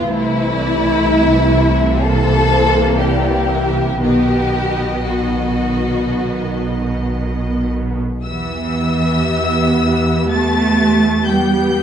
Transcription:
0.07 C2 C3 E3 A3 E4 C5
0.54 D5
1.00 E5
2.02 E3 A#3 A4 C5
2.99 G4 D5
3.50 E5
4.01 B1 B2 D#3 B3 G4 D#5
5.05 D#3 B3 F#4
8.23 E2 E3 B3 G4 E5 E6
10.29 A3 A5 A6
11.26 G3 B3 G4 G5 G6

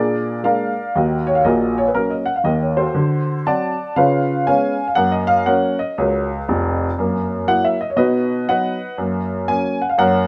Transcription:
Already playing: A#2 D4 G#4 A#4 D5
0.43 G#3 A#3 D4 A#4 D5 F5
0.95 D#2 D#3 F#4 A#4 D#5
1.27 C#5
1.35 F5
1.44 A#1 A#2 F#4 A#4 D#5
1.78 C#5
1.87 B4
1.95 F#3 A#3 C#4 A#4
2.10 D#5
2.26 F#5
2.36 F5
2.44 D#2 D#3 D#5
2.61 C#5
2.77 F#4 A4 C5
2.95 D3 F#4
3.47 F#3 C4 D5 F#5 A5
3.96 C#3 F4 B4 C#5 F5
4.46 G#3 B3 C#4 C#5 F5 G#5
4.88 F5
4.95 F#2 A#3 F#5
5.12 D#5
5.27 F5
5.46 F#3 A#3 C#4 A#4 C#5 F#5
5.79 D#5
5.98 C#2 F#4 A#4 C#5
6.48 F1 F2
6.98 F#2 A#3
7.47 F#3 A#3 E4 F#5
7.65 E5
7.81 D#5
7.90 C#5
7.96 B2 D#4 F#4 B4 D#5
8.48 F#3 B3 D#4 B4 D#5 F#5
8.98 F#2 A#3
9.48 F#3 A#3 C#4 G#5
9.82 F#5
9.89 F5
9.98 F#2 A#3 A#4 C#5 F#5

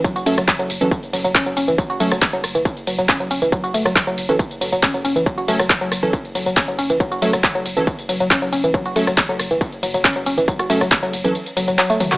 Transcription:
0.04 F#3, kick, closed hi-hat, tambourine
0.16 F#4, closed hi-hat, tambourine
0.26 F#1 F#3 A3 C#4 A4, open hi-hat, ride, tambourine
0.38 F#1 F#3, cross-stick, closed hi-hat, tambourine
0.48 kick, clap, closed hi-hat, tambourine
0.59 F#3, closed hi-hat
0.70 F#1, open hi-hat, ride, tambourine
0.81 F#1 E3 F#3 C#4 A4, closed hi-hat, tambourine
0.91 kick, closed hi-hat, tambourine
1.03 closed hi-hat, tambourine
1.13 F#1 F#3, open hi-hat, ride, tambourine
1.25 F#1 F#3, closed hi-hat, tambourine
1.35 C#4, kick, clap, closed hi-hat, tambourine
1.46 F#3, closed hi-hat
1.57 F#1 C#4, open hi-hat, ride, tambourine
1.68 F#1 E3, closed hi-hat, tambourine
1.78 F#3, kick, closed hi-hat, tambourine
1.90 F#4, closed hi-hat
2.00 F#1 F#3 A3 C#4 A4, open hi-hat, ride, tambourine
2.12 F#1 F#3, cross-stick, closed hi-hat, tambourine
2.22 kick, clap, closed hi-hat, tambourine
2.33 F#3, closed hi-hat
2.44 F#1, cross-stick, open hi-hat, ride, tambourine
2.55 F#1 E3, closed hi-hat, tambourine
2.65 kick, closed hi-hat, tambourine
2.77 closed hi-hat
2.87 F#1 F#3, open hi-hat, ride, tambourine
2.98 F#1 F#3, closed hi-hat, tambourine
3.09 C#4, kick, clap, closed hi-hat, tambourine
3.20 F#3, closed hi-hat
3.31 F#1 C#4, open hi-hat, ride, tambourine
3.42 F#1 E3, closed hi-hat, tambourine
3.52 F#3, kick, closed hi-hat, tambourine
3.64 F#4, closed hi-hat, tambourine
3.74 F#1 A3, open hi-hat, ride, tambourine
3.85 F#1 F#3, cross-stick, closed hi-hat, tambourine
3.96 kick, clap, closed hi-hat, tambourine
4.07 F#3, closed hi-hat
4.18 F#1, open hi-hat, ride, tambourine
4.29 F#1 E3 F#3 C#4 A4, closed hi-hat, tambourine
4.39 kick, closed hi-hat, tambourine
4.51 closed hi-hat, tambourine
4.61 F#1 F#3, open hi-hat, ride, tambourine
4.73 F#1 F#3, closed hi-hat, tambourine
4.83 C#4, kick, clap, closed hi-hat, tambourine
4.94 F#3, closed hi-hat
5.05 F#1 C#4, open hi-hat, ride, tambourine
5.16 F#1 E3, closed hi-hat, tambourine
5.26 F#3, kick, closed hi-hat, tambourine
5.38 F#4, closed hi-hat
5.48 F#1 F#3 A3 C#4 A4, open hi-hat, ride, tambourine
5.59 F#1 F#3, cross-stick, closed hi-hat, tambourine
5.70 kick, clap, closed hi-hat, tambourine
5.81 F#3, closed hi-hat
5.92 F#1, cross-stick, open hi-hat, ride, tambourine
6.03 F#1 E3 F#3 C#4 A4, closed hi-hat, tambourine
6.13 kick, closed hi-hat, tambourine
6.25 closed hi-hat
6.35 F#1 F#3, open hi-hat, ride, tambourine
6.46 F#1 F#3, closed hi-hat, tambourine
6.57 C#4, kick, clap, closed hi-hat, tambourine
6.68 F#3, closed hi-hat
6.79 F#1 C#4, open hi-hat, ride, tambourine
6.90 F#1 E3, closed hi-hat, tambourine
7.00 F#3, kick, closed hi-hat, tambourine
7.12 F#4, closed hi-hat, tambourine
7.22 F#1 F#3 A3 C#4 A4, open hi-hat, ride, tambourine
7.33 F#1 F#3, cross-stick, closed hi-hat, tambourine
7.44 kick, clap, closed hi-hat, tambourine
7.55 F#3, closed hi-hat
7.66 F#1, open hi-hat, ride, tambourine
7.77 F#1 E3 F#3 C#4 A4, closed hi-hat, tambourine
7.87 kick, closed hi-hat, tambourine
7.99 closed hi-hat, tambourine
8.09 F#1 F#3, open hi-hat, ride, tambourine
8.20 F#1 F#3, closed hi-hat, tambourine
8.31 C#4, kick, clap, closed hi-hat, tambourine
8.42 F#3, closed hi-hat
8.53 F#1 C#4, open hi-hat, ride, tambourine
8.64 F#1 E3, closed hi-hat, tambourine
8.74 F#3, kick, closed hi-hat, tambourine
8.85 F#4, closed hi-hat
8.96 F#1 F#3 A3 C#4 A4, open hi-hat, ride, tambourine
9.07 F#1 F#3, cross-stick, closed hi-hat, tambourine
9.18 kick, clap, closed hi-hat, tambourine
9.29 F#3, closed hi-hat
9.39 F#1, cross-stick, open hi-hat, ride, tambourine
9.51 F#1 E3, closed hi-hat, tambourine
9.61 kick, closed hi-hat, tambourine
9.72 closed hi-hat
9.83 F#1 F#3, open hi-hat, ride, tambourine
9.94 F#1 F#3, closed hi-hat, tambourine
10.04 C#4, kick, clap, closed hi-hat, tambourine
10.16 F#3, closed hi-hat
10.26 F#1 C#4, open hi-hat, ride, tambourine
10.38 F#1 E3, closed hi-hat, tambourine
10.48 F#3, kick, closed hi-hat, tambourine
10.59 F#4, cross-stick, closed hi-hat, tambourine
10.70 F#1 F#3 A3 C#4 A4, open hi-hat, ride, tambourine
10.81 F#1 F#3, cross-stick, closed hi-hat, tambourine
10.91 kick, clap, closed hi-hat, tambourine
11.03 F#3, closed hi-hat, tambourine
11.13 F#1, open hi-hat, ride, tambourine
11.24 F#1 E3 F#3 C#4 A4, closed hi-hat, tambourine
11.35 closed hi-hat, tambourine
11.46 closed hi-hat, tambourine
11.57 F#1 F#3, open hi-hat, ride, tambourine
11.68 F#1 F#3, closed hi-hat, tambourine
11.78 F#3, clap, closed hi-hat, tambourine
11.90 A3, closed hi-hat, tambourine
12.00 F#1 F#3, open hi-hat, high tom, ride, tambourine
12.12 F#1 F#4, clap, closed hi-hat, mid tom, tambourine

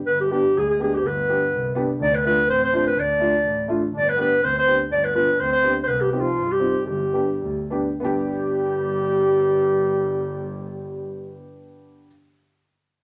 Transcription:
0.06 G1 B3 B4
0.21 G4
0.26 G#3
0.31 G3 B3 D4 G4
0.55 D2 G#3 G#4
0.69 G#4
0.79 B3 D4 G4 G#4
0.95 C4 G4
1.03 G1 B3
1.07 B4
1.29 B3 D4 G4
1.52 C2
1.75 B3 D4 G4
1.99 D2 D4 D#4 D5
2.04 D4
2.12 B3 B4
2.25 A3 B3 D4 F4 B4
2.48 A1 C4 C5
2.64 C5
2.72 A3 C4 D4 F4 C5
2.87 B4
2.96 D2 D4 D5
3.19 A3 D4 F4
3.44 A1
3.68 A3 D4 F4
3.92 G1 D4
3.97 D5
4.05 B3 B4
4.16 B3 D4 G4
4.21 B4
4.42 D2 C4 C5
4.54 C4
4.58 C5
4.66 B3 D4 G4
4.90 G1 D4 D5
5.03 B3 B4
5.14 B3 D4 F4 B4
5.33 D4
5.39 D2 C4 C5
5.52 C5
5.63 B3 D4 G4
5.84 C2 B4 C5
5.88 B3
6.01 G4
6.12 C4 D#4 G4
6.19 F3 F4
6.35 G2
6.46 G#3
6.52 G3 G4
6.60 C4 D#4 F4
6.86 G1 G3 G4
6.96 F3
7.03 G3
7.13 B3 D4 G4
7.41 D2
7.70 B3 D4 G4
8.00 G1 G3 B3 D4 G4
8.05 G4

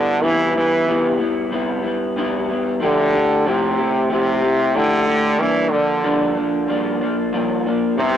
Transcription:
Already playing: D3 G3 B3 E4
0.21 C3 E3 G3 B3 E4
0.55 E3 G3 B3 E4
0.87 C3 G3 B3 E4
1.19 G3 B3 E4
1.51 C3 G3 B3 E4
1.83 G3 B3 E4
2.16 C3 G3 B3 E4
2.48 G3 B3 E4
2.80 D3 F3 A3 E4 G4
3.12 A3 E4 G4
3.45 C3 F3 A3 E4 G4
3.78 A3 E4 G4
4.09 C3 F3 A3 E4 G4
4.42 A3 E4 G4
4.74 D3 F3 A3 E4 G4
5.07 A3 E4 G4
5.38 G2 E3 A#3 D4
5.71 D3 F3 A#3 D4
6.03 G2 F3 A#3 D4
6.35 F3 A#3 D4
6.67 G2 F3 A#3 D4
7.01 F3 A#3 D4
7.32 G2 F3 A#3 D4
7.66 F3 A#3 D4
7.97 C3 G3 B3 E4

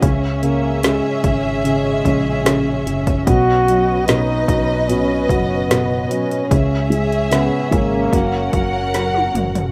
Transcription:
Already playing: C#4
0.01 C#2 C#3 C#4 G#4 E5, kick, closed hi-hat
0.42 C#3 A#3, closed hi-hat
0.83 C#3 G#3, snare, closed hi-hat
1.24 G#1 C#3, kick, closed hi-hat
1.64 C#3 G#3, closed hi-hat
2.05 A#1 C#3, kick, closed hi-hat
2.45 C#3, snare, closed hi-hat
2.86 F#1 C#3, closed hi-hat
3.07 kick, closed hi-hat
3.26 B1 B2 F#4 B4 D#5, kick, closed hi-hat
3.67 F#3, closed hi-hat
4.07 B2 D#4, snare, closed hi-hat
4.48 B1 F#3, kick, closed hi-hat
4.89 B2 C#4, closed hi-hat
5.29 F#1 F#3 B3, kick, closed hi-hat
5.70 B2, snare, closed hi-hat
6.09 F#3 C#4, closed hi-hat
6.31 closed hi-hat
6.50 C#2 C#3 C#4 G#4 E5, kick, closed hi-hat
6.90 G#3, closed hi-hat
7.12 closed hi-hat
7.31 C#3 B3, snare, closed hi-hat
7.71 G#1 G#3 A#3, kick, closed hi-hat
8.12 F#1 F#3 A#4 F#5, kick, closed hi-hat
8.53 F#1 F#3, kick, closed hi-hat
8.94 F#3, snare, closed hi-hat
9.14 high tom
9.34 F#1 F#3, closed hi-hat, mid tom
9.55 closed hi-hat, floor tom

